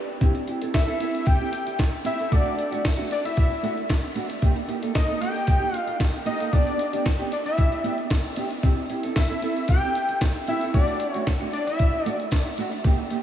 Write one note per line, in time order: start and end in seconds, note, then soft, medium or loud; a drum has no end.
0.21 0.40 C4 medium
0.21 0.35 E4 medium
0.21 0.34 G4 loud
0.21 kick loud
0.21 closed hi-hat medium
0.35 muted clean electric guitar stroke soft
0.35 closed hi-hat soft
0.47 0.62 C4 medium
0.47 0.61 E4 medium
0.47 0.61 G4 medium
0.47 closed hi-hat medium
0.61 0.73 C4 soft
0.61 0.73 E4 medium
0.61 0.75 A4 medium
0.61 closed hi-hat soft
0.74 1.28 E5 medium
0.74 muted clean electric guitar stroke soft
0.74 kick loud
0.74 snare loud
0.74 clap medium
0.74 closed hi-hat loud
0.74 tambourine medium
0.87 0.98 C4 soft
0.87 0.99 E4 medium
0.87 1.01 A4 medium
1.00 1.19 C4 medium
1.00 1.14 E4 medium
1.00 1.14 A4 medium
1.00 closed hi-hat medium
1.14 muted clean electric guitar stroke soft
1.14 closed hi-hat soft
1.26 1.79 G5 loud
1.26 muted clean electric guitar stroke soft
1.26 kick loud
1.26 closed hi-hat medium
1.40 1.51 C4 medium
1.40 1.52 E4 medium
1.40 1.53 G4 medium
1.53 muted clean electric guitar stroke soft
1.53 closed hi-hat medium
1.67 muted clean electric guitar stroke soft
1.67 closed hi-hat soft
1.79 muted clean electric guitar stroke soft
1.79 kick loud
1.79 snare loud
1.79 clap medium
1.79 closed hi-hat medium
1.79 tambourine medium
1.92 muted clean electric guitar stroke soft
2.04 2.19 C4 medium
2.04 2.18 E4 medium
2.04 2.18 G4 loud
2.04 2.34 E5 loud
2.04 closed hi-hat medium
2.19 2.30 C4 soft
2.19 2.31 E4 medium
2.19 2.32 A4 medium
2.19 closed hi-hat soft
2.31 2.56 A3 medium
2.31 2.56 D4 medium
2.31 2.57 F#4 loud
2.31 2.85 D5 loud
2.31 kick loud
2.31 closed hi-hat medium
2.46 closed hi-hat soft
2.58 muted clean electric guitar stroke soft
2.58 closed hi-hat medium
2.71 2.83 A3 medium
2.71 2.84 D4 medium
2.71 2.84 F#4 medium
2.71 closed hi-hat soft
2.85 kick loud
2.85 snare loud
2.85 clap medium
2.85 closed hi-hat medium
2.85 tambourine medium
2.97 3.09 A3 medium
2.97 3.09 D4 medium
2.97 3.10 F#4 medium
3.10 3.24 D5 medium
3.10 muted clean electric guitar stroke soft
3.10 closed hi-hat medium
3.24 3.74 E5 medium
3.24 muted clean electric guitar stroke soft
3.24 closed hi-hat soft
3.37 kick loud
3.37 closed hi-hat medium
3.50 muted clean electric guitar stroke soft
3.63 3.82 A3 medium
3.63 3.76 D4 medium
3.63 3.75 F#4 medium
3.63 closed hi-hat medium
3.76 muted clean electric guitar stroke soft
3.76 closed hi-hat soft
3.89 kick loud
3.89 snare loud
3.89 clap medium
3.89 closed hi-hat medium
3.89 tambourine medium
4.03 muted clean electric guitar stroke soft
4.15 4.34 A3 medium
4.15 4.30 D4 medium
4.15 4.28 F#4 medium
4.15 closed hi-hat medium
4.29 muted clean electric guitar stroke soft
4.29 closed hi-hat soft
4.41 4.61 A#3 medium
4.41 4.56 D#4 medium
4.41 4.54 G4 medium
4.41 kick loud
4.41 closed hi-hat medium
4.55 muted clean electric guitar stroke soft
4.55 closed hi-hat soft
4.68 4.82 A#3 medium
4.68 4.81 D#4 medium
4.68 4.81 G4 medium
4.68 closed hi-hat medium
4.82 4.93 A#3 medium
4.82 4.93 D#4 medium
4.82 4.95 A4 medium
4.82 closed hi-hat soft
4.94 5.19 D#5 medium
4.94 muted clean electric guitar stroke soft
4.94 kick loud
4.94 snare loud
4.94 clap medium
4.94 closed hi-hat loud
4.94 tambourine medium
5.08 5.19 A#3 medium
5.08 5.20 D#4 medium
5.08 5.21 A4 medium
5.21 5.40 A#3 medium
5.21 5.35 D#4 medium
5.21 5.34 A4 medium
5.21 5.76 G5 loud
5.21 closed hi-hat medium
5.34 muted clean electric guitar stroke soft
5.34 closed hi-hat soft
5.46 muted clean electric guitar stroke soft
5.46 kick loud
5.46 closed hi-hat medium
5.60 5.71 A#3 medium
5.60 5.72 D#4 medium
5.60 5.72 G4 medium
5.72 5.96 F5 loud
5.72 muted clean electric guitar stroke medium
5.72 closed hi-hat medium
5.87 muted clean electric guitar stroke soft
5.87 closed hi-hat soft
5.99 muted clean electric guitar stroke soft
5.99 kick loud
5.99 snare loud
5.99 clap medium
5.99 closed hi-hat medium
5.99 tambourine medium
6.13 muted clean electric guitar stroke soft
6.25 6.40 A#3 medium
6.25 6.40 D#4 medium
6.25 6.39 G4 medium
6.25 6.54 D#5 loud
6.25 closed hi-hat medium
6.40 6.52 A#3 soft
6.40 6.53 D#4 medium
6.40 6.54 A4 medium
6.40 closed hi-hat soft
6.52 6.77 B3 medium
6.52 6.77 D4 medium
6.52 6.78 G4 medium
6.52 7.05 D5 loud
6.52 kick loud
6.52 closed hi-hat medium
6.67 closed hi-hat soft
6.79 muted clean electric guitar stroke soft
6.79 closed hi-hat medium
6.93 7.04 B3 soft
6.93 7.05 D4 medium
6.93 7.06 G4 medium
6.93 closed hi-hat soft
7.06 muted clean electric guitar stroke soft
7.06 kick loud
7.06 snare loud
7.06 clap medium
7.06 closed hi-hat loud
7.06 tambourine medium
7.19 7.31 B3 medium
7.19 7.31 D4 medium
7.19 7.32 G4 medium
7.19 closed hi-hat soft
7.32 7.38 D5 medium
7.32 muted clean electric guitar stroke soft
7.32 closed hi-hat medium
7.45 7.95 E5 loud
7.45 muted clean electric guitar stroke soft
7.45 closed hi-hat soft
7.58 kick loud
7.58 closed hi-hat medium
7.72 muted clean electric guitar stroke soft
7.72 closed hi-hat soft
7.84 8.03 B3 medium
7.84 7.98 D4 medium
7.84 7.97 G4 loud
7.84 closed hi-hat medium
7.98 muted clean electric guitar stroke soft
7.98 closed hi-hat soft
8.10 kick loud
8.10 snare loud
8.10 clap medium
8.10 closed hi-hat medium
8.10 tambourine medium
8.24 muted clean electric guitar stroke soft
8.24 closed hi-hat soft
8.36 8.56 B3 medium
8.36 8.51 D4 medium
8.36 8.50 G4 medium
8.36 closed hi-hat medium
8.51 muted clean electric guitar stroke soft
8.51 closed hi-hat soft
8.63 8.82 C4 medium
8.63 8.78 E4 medium
8.63 8.76 G4 medium
8.63 kick loud
8.63 closed hi-hat medium
8.77 muted clean electric guitar stroke soft
8.77 closed hi-hat soft
8.90 9.04 C4 medium
8.90 9.03 E4 medium
8.90 9.03 G4 medium
8.90 closed hi-hat medium
9.03 9.15 C4 soft
9.03 9.15 E4 medium
9.03 9.17 A4 medium
9.03 closed hi-hat soft
9.16 9.65 E5 medium
9.16 muted clean electric guitar stroke soft
9.16 kick loud
9.16 snare loud
9.16 clap medium
9.16 closed hi-hat loud
9.16 tambourine medium
9.29 9.41 C4 medium
9.29 9.41 E4 medium
9.29 9.43 A4 medium
9.42 9.61 C4 medium
9.42 9.56 E4 medium
9.42 9.56 A4 medium
9.42 closed hi-hat medium
9.56 muted clean electric guitar stroke soft
9.56 closed hi-hat soft
9.68 10.18 G5 loud
9.68 muted clean electric guitar stroke soft
9.68 kick loud
9.68 closed hi-hat medium
9.83 9.94 C4 medium
9.83 9.95 E4 medium
9.83 9.95 G4 medium
9.95 muted clean electric guitar stroke soft
9.95 closed hi-hat medium
10.09 muted clean electric guitar stroke soft
10.09 closed hi-hat soft
10.21 muted clean electric guitar stroke soft
10.21 kick loud
10.21 snare loud
10.21 clap medium
10.21 closed hi-hat medium
10.21 tambourine medium
10.36 muted clean electric guitar stroke soft
10.47 10.63 C4 medium
10.47 10.61 E4 medium
10.47 10.61 G4 medium
10.47 10.72 E5 loud
10.47 closed hi-hat medium
10.61 10.74 C4 medium
10.61 10.75 E4 medium
10.61 10.75 A4 medium
10.61 closed hi-hat soft
10.74 10.98 A3 medium
10.74 10.99 D4 medium
10.74 10.99 F#4 medium
10.74 11.11 D5 medium
10.74 kick loud
10.74 closed hi-hat medium
10.88 closed hi-hat soft
11.00 muted clean electric guitar stroke soft
11.00 closed hi-hat medium
11.11 11.27 F#4 medium
11.11 11.23 C#5 medium
11.11 closed hi-hat soft
11.15 11.26 A3 medium
11.15 11.27 D4 medium
11.27 kick loud
11.27 snare loud
11.27 clap medium
11.27 closed hi-hat medium
11.27 tambourine medium
11.40 11.52 A3 medium
11.40 11.52 D4 medium
11.40 11.53 F#4 medium
11.53 11.66 D5 medium
11.53 muted clean electric guitar stroke soft
11.53 closed hi-hat medium
11.67 12.16 E5 loud
11.67 muted clean electric guitar stroke soft
11.67 closed hi-hat soft
11.79 kick loud
11.79 closed hi-hat medium
11.93 muted clean electric guitar stroke soft
12.05 12.24 A3 medium
12.05 12.20 D4 medium
12.05 12.19 F#4 medium
12.05 closed hi-hat medium
12.20 muted clean electric guitar stroke soft
12.20 closed hi-hat soft
12.31 kick loud
12.31 snare loud
12.31 clap medium
12.31 closed hi-hat medium
12.31 tambourine medium
12.46 muted clean electric guitar stroke medium
12.58 12.77 A3 medium
12.58 12.72 D4 medium
12.58 12.71 F#4 loud
12.58 closed hi-hat medium
12.72 muted clean electric guitar stroke soft
12.72 closed hi-hat soft
12.84 13.03 A#3 medium
12.84 12.98 D#4 medium
12.84 12.97 G4 medium
12.84 kick loud
12.84 closed hi-hat medium
12.98 muted clean electric guitar stroke soft
12.98 closed hi-hat soft
13.10 13.23 A#3 medium
13.10 13.23 D#4 medium
13.10 13.23 G4 medium
13.10 closed hi-hat medium